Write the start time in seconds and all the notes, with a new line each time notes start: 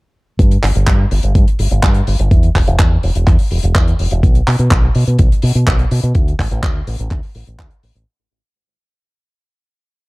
0.39 G2, kick, closed hi-hat
0.51 closed hi-hat
0.63 G1, clap, open hi-hat
0.75 G1, closed hi-hat
0.87 G2, kick, clap, closed hi-hat
1.11 G1, open hi-hat
1.23 G1, closed hi-hat
1.35 G2, kick, closed hi-hat
1.48 closed hi-hat
1.59 G1, open hi-hat
1.71 G1, closed hi-hat
1.83 G2, kick, clap, closed hi-hat
1.94 closed hi-hat
2.07 G1, open hi-hat
2.19 G1, closed hi-hat
2.31 E2, kick, closed hi-hat
2.43 closed hi-hat
2.55 E1, kick, clap, open hi-hat
2.67 E1, closed hi-hat
2.79 E2, kick, clap, closed hi-hat
3.03 E1, open hi-hat
3.15 E1, closed hi-hat
3.27 E2, kick, clap, closed hi-hat
3.39 open hi-hat
3.51 E1, open hi-hat
3.63 E1, closed hi-hat
3.75 E2, kick, clap, closed hi-hat
3.88 closed hi-hat
3.99 E1, open hi-hat
4.11 E1, closed hi-hat
4.23 B1, kick, closed hi-hat
4.35 closed hi-hat
4.47 B2, clap, open hi-hat
4.59 B2, closed hi-hat
4.71 B1, kick, clap, closed hi-hat
4.95 B2, open hi-hat
5.07 B2, closed hi-hat
5.19 B1, kick, closed hi-hat
5.32 closed hi-hat
5.42 B2, open hi-hat
5.55 B2, closed hi-hat
5.67 B1, kick, clap, closed hi-hat
5.79 closed hi-hat
5.91 B2, open hi-hat
6.03 B2, closed hi-hat
6.15 D2, kick, closed hi-hat
6.28 closed hi-hat
6.39 A1, kick, clap, open hi-hat
6.51 A1, closed hi-hat
6.63 D2, kick, clap, closed hi-hat
6.87 A1, open hi-hat
6.99 A1, closed hi-hat
7.10 D2, kick, clap, closed hi-hat
7.23 open hi-hat
7.35 A1, open hi-hat
7.47 A1, closed hi-hat
7.59 D2, kick, clap, closed hi-hat
7.71 closed hi-hat
7.83 A1, open hi-hat
7.95 A1, closed hi-hat